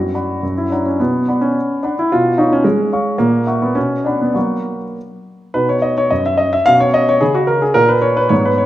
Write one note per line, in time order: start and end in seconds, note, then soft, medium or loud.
0.00 0.13 F#2 soft
0.00 0.57 F#4 medium
0.14 0.40 D5 soft
0.14 0.40 F#5 soft
0.14 0.40 B5 soft
0.43 0.71 F#2 soft
0.58 0.72 E4 medium
0.70 0.85 D4 medium
0.70 0.97 C#5 soft
0.70 0.97 F#5 soft
0.70 0.97 A#5 soft
0.86 1.00 C#4 medium
1.00 1.27 B2 soft
1.00 1.42 B3 medium
1.28 1.80 D5 soft
1.28 1.80 F#5 soft
1.28 1.80 B5 soft
1.41 1.83 C#4 medium
1.83 1.97 D4 medium
1.83 2.08 D5 soft
1.83 2.09 F#5 soft
1.83 2.09 B5 soft
1.99 2.12 E4 medium
2.12 2.38 B2 medium
2.12 2.39 F4 medium
2.38 2.51 D#4 medium
2.38 2.88 C#5 soft
2.38 2.88 F5 soft
2.38 2.88 C#6 soft
2.53 2.65 C#4 medium
2.64 3.19 G#3 medium
2.92 3.17 C#5 soft
2.92 3.17 F5 soft
2.92 3.17 C#6 soft
3.18 3.47 A#2 medium
3.18 3.61 A#3 medium
3.47 3.73 E5 soft
3.47 3.73 F#5 soft
3.47 3.74 C#6 soft
3.62 3.76 B3 medium
3.75 4.05 B2 soft
3.75 4.05 C#4 medium
4.04 4.20 D4 medium
4.04 4.33 D5 soft
4.04 4.33 F#5 soft
4.04 4.33 B5 soft
4.21 4.36 B3 medium
4.34 4.78 F#3 soft
4.34 4.95 A#3 medium
4.34 4.84 F#5 soft
4.34 4.84 C#6 soft
5.54 6.00 B2 medium
5.54 6.63 D#4 soft
5.54 5.68 B4 medium
5.69 5.83 C#5 medium
5.82 5.96 D#5 medium
5.98 6.11 C#5 medium
6.10 6.56 F#2 medium
6.10 6.25 D#5 medium
6.26 6.39 E5 medium
6.37 6.52 D#5 medium
6.53 6.67 E5 medium
6.66 7.10 B2 medium
6.66 7.71 C#4 soft
6.66 6.80 F5 medium
6.80 6.94 C#5 medium
6.94 7.07 D#5 medium
7.09 7.22 C#5 medium
7.21 7.65 C#3 medium
7.21 7.34 G#4 medium
7.35 7.48 F#4 medium
7.47 7.61 A#4 medium
7.62 7.75 G#4 medium
7.74 8.20 A#2 medium
7.74 8.27 A#3 soft
7.74 7.89 A#4 medium
7.89 8.03 B4 medium
8.02 8.16 C#5 medium
8.17 8.31 B4 medium
8.29 8.66 G#2 medium
8.29 8.66 B3 soft
8.29 8.44 C#5 medium
8.45 8.59 B4 medium
8.58 8.66 C#5 medium